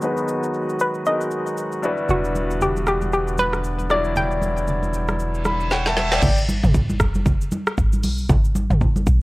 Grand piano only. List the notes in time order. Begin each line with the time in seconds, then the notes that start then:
0.01 G#3 B3 D#4 F#4 B4
1.06 G#3 B3 D#4 F#4 A#4
1.82 F#3 D4 E4 F#4 B4
1.89 G3
3.90 F#3 G3 D4 E4 D5
5.46 B5
5.72 C#5 F#5 G5
5.87 E5 A5
5.98 E5
6.13 D5 G5